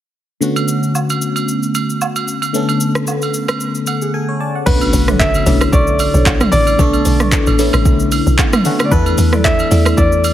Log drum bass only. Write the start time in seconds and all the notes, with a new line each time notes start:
4.67 B1
4.93 B1
5.46 B1
5.73 B1
6.14 B1
6.53 A1
6.79 B1
7.06 B1
7.47 A1
7.74 A1
7.85 B1
8.27 B1
8.92 E2
9.18 E2
9.71 E2
9.98 E2